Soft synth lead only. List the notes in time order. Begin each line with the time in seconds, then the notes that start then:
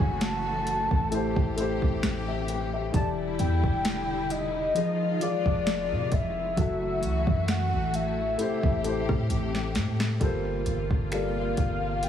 Already playing: G#5
0.16 G#5
0.22 A5
2.95 A5
3.40 G5
4.31 D#5
5.22 D5
6.13 E5
7.50 F#5
7.95 E5
11.13 F5
12.04 G5